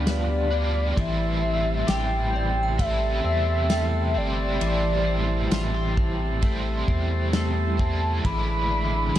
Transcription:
Already playing: D2 F3 G3 D4 F4 G4 B4 D5 F5 B5
0.06 B3 D5, snare, ride, tambourine
0.51 D4 F4 B4 D5
0.56 G3
0.95 A1 A2 E3 G3 E5 A5 C6, kick, ride
0.99 C4 E4 E5
1.04 C5
1.42 C4
1.87 A1 G4 G5, snare, ride, tambourine
2.33 C4 D5
2.63 G5
2.78 G3 A3 C4 E5, kick, ride
2.82 E4 C5
2.91 A5
3.24 E2 C4 E5
3.70 A3 G5, snare, ride, tambourine
4.14 G1 C4 E4 C5 D5
4.18 G3 C4
4.59 A1 A2 E3, ride
4.63 G3 C4 E4 D5
4.68 C5
5.06 C4
5.51 A1 F4, snare, ride, tambourine
5.74 G4
5.97 C4, kick
6.41 G3 A3 C4, kick, ride
6.45 E4 C5
6.88 E2 C4, kick
7.33 A3, snare, ride, tambourine
7.77 C4 E4 C5 A5, kick
7.82 G3 C4
8.22 A1 A2 D3 E3 G#4 B5 D6, kick, ride
8.26 G#3 D4 E4
8.31 B4
8.71 D4
9.15 A1, ride

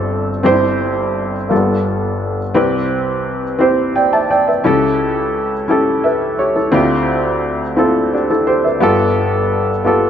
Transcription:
Already playing: G1 G2 C4 F4 G4 A4
0.43 G1 G2 C4 D4 G4 C5
0.51 E4
1.49 G1 G2 A#3 F4 G4 A4
1.55 B3
2.54 C2 C3 C4 E4 G4 B4
3.59 C4 E4 G4 C5
3.96 D5 G5
4.13 E5 A5
4.31 D5 G5
4.48 B4 E5
4.64 C#2 C#3 C#4 E4 G4 A4
5.68 C#4 E4 G4 A4
6.04 B4 E5
6.39 G4 C#5
6.56 E4 A4
6.72 D2 D3 C4 E4 F4 G4
7.76 C4 E4 F4 A4
8.13 D4 G4
8.30 E4 A4
8.47 G4 C5
8.64 B4 E5
8.80 G1 G2 B3 F4 G4 A4
9.84 B3 F4 G4 A4

